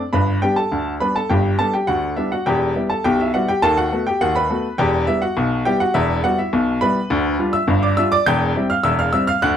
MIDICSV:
0, 0, Header, 1, 2, 480
1, 0, Start_track
1, 0, Tempo, 580271
1, 111, Time_signature, 2, 2, 24, 8
1, 7915, End_track
2, 0, Start_track
2, 0, Title_t, "Upright piano"
2, 0, Program_c, 0, 0
2, 0, Note_on_c, 0, 74, 78
2, 90, Note_off_c, 0, 74, 0
2, 104, Note_on_c, 0, 83, 100
2, 107, Note_on_c, 0, 43, 91
2, 110, Note_on_c, 0, 31, 83
2, 116, Note_on_c, 0, 71, 75
2, 299, Note_off_c, 0, 83, 0
2, 313, Note_off_c, 0, 43, 0
2, 314, Note_off_c, 0, 31, 0
2, 336, Note_off_c, 0, 71, 0
2, 348, Note_on_c, 0, 79, 98
2, 350, Note_on_c, 0, 55, 55
2, 355, Note_on_c, 0, 59, 53
2, 357, Note_on_c, 0, 62, 59
2, 357, Note_on_c, 0, 67, 74
2, 466, Note_off_c, 0, 67, 0
2, 466, Note_on_c, 0, 81, 87
2, 469, Note_off_c, 0, 79, 0
2, 476, Note_on_c, 0, 69, 69
2, 483, Note_off_c, 0, 55, 0
2, 486, Note_off_c, 0, 59, 0
2, 488, Note_off_c, 0, 62, 0
2, 593, Note_on_c, 0, 38, 81
2, 594, Note_on_c, 0, 50, 84
2, 757, Note_off_c, 0, 81, 0
2, 797, Note_off_c, 0, 38, 0
2, 798, Note_off_c, 0, 50, 0
2, 810, Note_off_c, 0, 69, 0
2, 831, Note_on_c, 0, 83, 99
2, 835, Note_on_c, 0, 55, 54
2, 840, Note_on_c, 0, 59, 58
2, 840, Note_on_c, 0, 62, 59
2, 841, Note_on_c, 0, 71, 73
2, 949, Note_off_c, 0, 71, 0
2, 952, Note_off_c, 0, 83, 0
2, 956, Note_on_c, 0, 81, 91
2, 966, Note_on_c, 0, 69, 74
2, 967, Note_off_c, 0, 55, 0
2, 970, Note_off_c, 0, 59, 0
2, 970, Note_off_c, 0, 62, 0
2, 1072, Note_off_c, 0, 69, 0
2, 1072, Note_on_c, 0, 79, 93
2, 1075, Note_off_c, 0, 81, 0
2, 1075, Note_on_c, 0, 31, 90
2, 1078, Note_on_c, 0, 43, 88
2, 1082, Note_on_c, 0, 67, 72
2, 1279, Note_off_c, 0, 31, 0
2, 1280, Note_off_c, 0, 43, 0
2, 1301, Note_off_c, 0, 79, 0
2, 1302, Note_off_c, 0, 67, 0
2, 1312, Note_on_c, 0, 81, 100
2, 1315, Note_on_c, 0, 55, 62
2, 1319, Note_on_c, 0, 59, 59
2, 1320, Note_on_c, 0, 62, 62
2, 1322, Note_on_c, 0, 69, 76
2, 1430, Note_off_c, 0, 69, 0
2, 1433, Note_off_c, 0, 81, 0
2, 1436, Note_on_c, 0, 79, 85
2, 1447, Note_off_c, 0, 55, 0
2, 1447, Note_on_c, 0, 67, 64
2, 1450, Note_off_c, 0, 59, 0
2, 1451, Note_off_c, 0, 62, 0
2, 1549, Note_on_c, 0, 78, 100
2, 1552, Note_off_c, 0, 67, 0
2, 1554, Note_on_c, 0, 38, 77
2, 1555, Note_off_c, 0, 79, 0
2, 1555, Note_on_c, 0, 50, 81
2, 1558, Note_on_c, 0, 66, 74
2, 1758, Note_off_c, 0, 38, 0
2, 1759, Note_off_c, 0, 50, 0
2, 1780, Note_off_c, 0, 66, 0
2, 1780, Note_off_c, 0, 78, 0
2, 1791, Note_on_c, 0, 76, 86
2, 1796, Note_on_c, 0, 55, 53
2, 1798, Note_on_c, 0, 59, 55
2, 1802, Note_on_c, 0, 62, 65
2, 1802, Note_on_c, 0, 64, 62
2, 1910, Note_off_c, 0, 64, 0
2, 1913, Note_off_c, 0, 76, 0
2, 1918, Note_on_c, 0, 78, 92
2, 1928, Note_off_c, 0, 55, 0
2, 1929, Note_off_c, 0, 59, 0
2, 1930, Note_on_c, 0, 66, 73
2, 1933, Note_off_c, 0, 62, 0
2, 2034, Note_off_c, 0, 66, 0
2, 2036, Note_off_c, 0, 78, 0
2, 2036, Note_on_c, 0, 79, 99
2, 2040, Note_on_c, 0, 28, 84
2, 2040, Note_on_c, 0, 40, 98
2, 2047, Note_on_c, 0, 67, 78
2, 2242, Note_off_c, 0, 28, 0
2, 2242, Note_off_c, 0, 40, 0
2, 2277, Note_on_c, 0, 55, 54
2, 2283, Note_on_c, 0, 59, 63
2, 2286, Note_on_c, 0, 64, 67
2, 2324, Note_off_c, 0, 79, 0
2, 2376, Note_off_c, 0, 67, 0
2, 2396, Note_on_c, 0, 81, 88
2, 2407, Note_on_c, 0, 69, 71
2, 2409, Note_off_c, 0, 55, 0
2, 2413, Note_off_c, 0, 59, 0
2, 2415, Note_off_c, 0, 64, 0
2, 2514, Note_off_c, 0, 69, 0
2, 2516, Note_off_c, 0, 81, 0
2, 2518, Note_on_c, 0, 79, 108
2, 2524, Note_on_c, 0, 35, 94
2, 2524, Note_on_c, 0, 47, 92
2, 2527, Note_on_c, 0, 67, 80
2, 2634, Note_off_c, 0, 67, 0
2, 2638, Note_off_c, 0, 79, 0
2, 2646, Note_on_c, 0, 76, 92
2, 2656, Note_on_c, 0, 64, 69
2, 2726, Note_off_c, 0, 35, 0
2, 2726, Note_off_c, 0, 47, 0
2, 2759, Note_off_c, 0, 64, 0
2, 2761, Note_on_c, 0, 78, 99
2, 2762, Note_off_c, 0, 76, 0
2, 2766, Note_on_c, 0, 55, 66
2, 2769, Note_on_c, 0, 59, 64
2, 2770, Note_on_c, 0, 66, 79
2, 2771, Note_on_c, 0, 64, 61
2, 2877, Note_off_c, 0, 66, 0
2, 2880, Note_off_c, 0, 78, 0
2, 2883, Note_on_c, 0, 79, 105
2, 2893, Note_on_c, 0, 67, 73
2, 2896, Note_off_c, 0, 55, 0
2, 2899, Note_off_c, 0, 59, 0
2, 2900, Note_off_c, 0, 64, 0
2, 2998, Note_off_c, 0, 67, 0
2, 2998, Note_on_c, 0, 81, 123
2, 3001, Note_off_c, 0, 79, 0
2, 3002, Note_on_c, 0, 39, 96
2, 3003, Note_on_c, 0, 51, 92
2, 3008, Note_on_c, 0, 69, 88
2, 3115, Note_off_c, 0, 69, 0
2, 3119, Note_off_c, 0, 81, 0
2, 3123, Note_on_c, 0, 78, 105
2, 3129, Note_on_c, 0, 66, 74
2, 3205, Note_off_c, 0, 39, 0
2, 3206, Note_off_c, 0, 51, 0
2, 3239, Note_off_c, 0, 66, 0
2, 3245, Note_on_c, 0, 57, 65
2, 3247, Note_on_c, 0, 59, 65
2, 3252, Note_on_c, 0, 66, 71
2, 3349, Note_off_c, 0, 78, 0
2, 3364, Note_on_c, 0, 79, 96
2, 3374, Note_on_c, 0, 67, 73
2, 3376, Note_off_c, 0, 57, 0
2, 3377, Note_off_c, 0, 59, 0
2, 3381, Note_off_c, 0, 66, 0
2, 3479, Note_off_c, 0, 67, 0
2, 3482, Note_off_c, 0, 79, 0
2, 3483, Note_on_c, 0, 78, 115
2, 3484, Note_on_c, 0, 39, 91
2, 3485, Note_on_c, 0, 51, 92
2, 3490, Note_on_c, 0, 66, 80
2, 3597, Note_off_c, 0, 66, 0
2, 3602, Note_off_c, 0, 78, 0
2, 3603, Note_on_c, 0, 83, 111
2, 3611, Note_on_c, 0, 71, 81
2, 3686, Note_off_c, 0, 39, 0
2, 3687, Note_off_c, 0, 51, 0
2, 3721, Note_on_c, 0, 57, 63
2, 3724, Note_on_c, 0, 59, 64
2, 3729, Note_on_c, 0, 66, 70
2, 3852, Note_off_c, 0, 57, 0
2, 3855, Note_off_c, 0, 59, 0
2, 3859, Note_off_c, 0, 66, 0
2, 3940, Note_off_c, 0, 71, 0
2, 3944, Note_off_c, 0, 83, 0
2, 3956, Note_on_c, 0, 79, 111
2, 3961, Note_on_c, 0, 28, 96
2, 3961, Note_on_c, 0, 40, 109
2, 3966, Note_on_c, 0, 67, 86
2, 4164, Note_off_c, 0, 40, 0
2, 4165, Note_off_c, 0, 28, 0
2, 4186, Note_off_c, 0, 67, 0
2, 4186, Note_off_c, 0, 79, 0
2, 4195, Note_on_c, 0, 76, 104
2, 4198, Note_on_c, 0, 55, 64
2, 4202, Note_on_c, 0, 59, 68
2, 4206, Note_on_c, 0, 64, 80
2, 4314, Note_off_c, 0, 64, 0
2, 4315, Note_on_c, 0, 78, 97
2, 4317, Note_off_c, 0, 76, 0
2, 4326, Note_on_c, 0, 66, 75
2, 4330, Note_off_c, 0, 55, 0
2, 4334, Note_off_c, 0, 59, 0
2, 4440, Note_on_c, 0, 35, 100
2, 4442, Note_on_c, 0, 47, 94
2, 4644, Note_off_c, 0, 35, 0
2, 4645, Note_off_c, 0, 47, 0
2, 4658, Note_off_c, 0, 66, 0
2, 4659, Note_off_c, 0, 78, 0
2, 4677, Note_on_c, 0, 79, 106
2, 4682, Note_on_c, 0, 55, 68
2, 4685, Note_on_c, 0, 59, 67
2, 4685, Note_on_c, 0, 67, 88
2, 4687, Note_on_c, 0, 64, 70
2, 4794, Note_off_c, 0, 67, 0
2, 4798, Note_off_c, 0, 79, 0
2, 4800, Note_on_c, 0, 78, 107
2, 4811, Note_on_c, 0, 66, 81
2, 4813, Note_off_c, 0, 55, 0
2, 4815, Note_off_c, 0, 59, 0
2, 4817, Note_off_c, 0, 64, 0
2, 4914, Note_on_c, 0, 76, 116
2, 4917, Note_off_c, 0, 66, 0
2, 4918, Note_on_c, 0, 40, 107
2, 4919, Note_off_c, 0, 78, 0
2, 4919, Note_on_c, 0, 28, 93
2, 4924, Note_on_c, 0, 64, 80
2, 5122, Note_off_c, 0, 40, 0
2, 5123, Note_off_c, 0, 28, 0
2, 5144, Note_off_c, 0, 76, 0
2, 5145, Note_off_c, 0, 64, 0
2, 5160, Note_on_c, 0, 78, 109
2, 5161, Note_on_c, 0, 55, 67
2, 5165, Note_on_c, 0, 59, 67
2, 5169, Note_on_c, 0, 64, 69
2, 5169, Note_on_c, 0, 66, 82
2, 5275, Note_off_c, 0, 66, 0
2, 5278, Note_off_c, 0, 64, 0
2, 5279, Note_off_c, 0, 78, 0
2, 5282, Note_on_c, 0, 76, 88
2, 5290, Note_on_c, 0, 64, 68
2, 5292, Note_off_c, 0, 55, 0
2, 5295, Note_off_c, 0, 59, 0
2, 5396, Note_off_c, 0, 64, 0
2, 5400, Note_off_c, 0, 76, 0
2, 5401, Note_on_c, 0, 35, 98
2, 5401, Note_on_c, 0, 47, 96
2, 5603, Note_off_c, 0, 35, 0
2, 5603, Note_off_c, 0, 47, 0
2, 5633, Note_on_c, 0, 83, 118
2, 5640, Note_on_c, 0, 55, 68
2, 5644, Note_on_c, 0, 59, 72
2, 5644, Note_on_c, 0, 71, 86
2, 5648, Note_on_c, 0, 64, 69
2, 5771, Note_off_c, 0, 55, 0
2, 5774, Note_off_c, 0, 59, 0
2, 5777, Note_off_c, 0, 64, 0
2, 5875, Note_on_c, 0, 50, 103
2, 5876, Note_on_c, 0, 38, 116
2, 6079, Note_off_c, 0, 50, 0
2, 6080, Note_off_c, 0, 38, 0
2, 6114, Note_off_c, 0, 83, 0
2, 6114, Note_on_c, 0, 55, 65
2, 6118, Note_on_c, 0, 62, 71
2, 6119, Note_on_c, 0, 65, 77
2, 6206, Note_off_c, 0, 71, 0
2, 6228, Note_on_c, 0, 88, 108
2, 6239, Note_on_c, 0, 76, 86
2, 6246, Note_off_c, 0, 55, 0
2, 6249, Note_off_c, 0, 62, 0
2, 6250, Note_off_c, 0, 65, 0
2, 6349, Note_on_c, 0, 43, 99
2, 6351, Note_on_c, 0, 31, 104
2, 6423, Note_off_c, 0, 88, 0
2, 6460, Note_off_c, 0, 76, 0
2, 6474, Note_on_c, 0, 86, 91
2, 6482, Note_on_c, 0, 74, 70
2, 6555, Note_off_c, 0, 43, 0
2, 6556, Note_off_c, 0, 31, 0
2, 6591, Note_off_c, 0, 74, 0
2, 6593, Note_on_c, 0, 88, 124
2, 6595, Note_off_c, 0, 86, 0
2, 6595, Note_on_c, 0, 55, 65
2, 6601, Note_on_c, 0, 62, 63
2, 6602, Note_on_c, 0, 76, 91
2, 6605, Note_on_c, 0, 65, 80
2, 6711, Note_off_c, 0, 76, 0
2, 6714, Note_off_c, 0, 88, 0
2, 6714, Note_on_c, 0, 86, 121
2, 6722, Note_on_c, 0, 74, 90
2, 6727, Note_off_c, 0, 55, 0
2, 6731, Note_off_c, 0, 62, 0
2, 6734, Note_off_c, 0, 65, 0
2, 6830, Note_off_c, 0, 74, 0
2, 6835, Note_off_c, 0, 86, 0
2, 6836, Note_on_c, 0, 91, 123
2, 6838, Note_on_c, 0, 28, 105
2, 6838, Note_on_c, 0, 40, 109
2, 6846, Note_on_c, 0, 79, 98
2, 7041, Note_off_c, 0, 28, 0
2, 7041, Note_off_c, 0, 40, 0
2, 7078, Note_on_c, 0, 55, 64
2, 7082, Note_on_c, 0, 60, 64
2, 7087, Note_on_c, 0, 64, 77
2, 7124, Note_off_c, 0, 91, 0
2, 7176, Note_off_c, 0, 79, 0
2, 7194, Note_on_c, 0, 89, 107
2, 7205, Note_on_c, 0, 77, 78
2, 7209, Note_off_c, 0, 55, 0
2, 7212, Note_off_c, 0, 60, 0
2, 7215, Note_off_c, 0, 64, 0
2, 7308, Note_on_c, 0, 88, 124
2, 7312, Note_off_c, 0, 77, 0
2, 7314, Note_on_c, 0, 28, 93
2, 7314, Note_on_c, 0, 40, 93
2, 7315, Note_off_c, 0, 89, 0
2, 7320, Note_on_c, 0, 76, 88
2, 7429, Note_off_c, 0, 76, 0
2, 7431, Note_off_c, 0, 88, 0
2, 7434, Note_on_c, 0, 89, 105
2, 7443, Note_on_c, 0, 77, 84
2, 7518, Note_off_c, 0, 28, 0
2, 7518, Note_off_c, 0, 40, 0
2, 7549, Note_on_c, 0, 88, 118
2, 7550, Note_off_c, 0, 77, 0
2, 7554, Note_off_c, 0, 89, 0
2, 7555, Note_on_c, 0, 55, 62
2, 7559, Note_on_c, 0, 60, 69
2, 7560, Note_on_c, 0, 64, 66
2, 7561, Note_on_c, 0, 76, 90
2, 7669, Note_off_c, 0, 76, 0
2, 7671, Note_off_c, 0, 88, 0
2, 7672, Note_on_c, 0, 89, 124
2, 7682, Note_on_c, 0, 77, 94
2, 7686, Note_off_c, 0, 55, 0
2, 7689, Note_off_c, 0, 60, 0
2, 7690, Note_off_c, 0, 64, 0
2, 7790, Note_off_c, 0, 77, 0
2, 7793, Note_off_c, 0, 89, 0
2, 7794, Note_on_c, 0, 90, 127
2, 7798, Note_on_c, 0, 50, 100
2, 7799, Note_on_c, 0, 38, 108
2, 7805, Note_on_c, 0, 78, 94
2, 7915, Note_off_c, 0, 38, 0
2, 7915, Note_off_c, 0, 50, 0
2, 7915, Note_off_c, 0, 78, 0
2, 7915, Note_off_c, 0, 90, 0
2, 7915, End_track
0, 0, End_of_file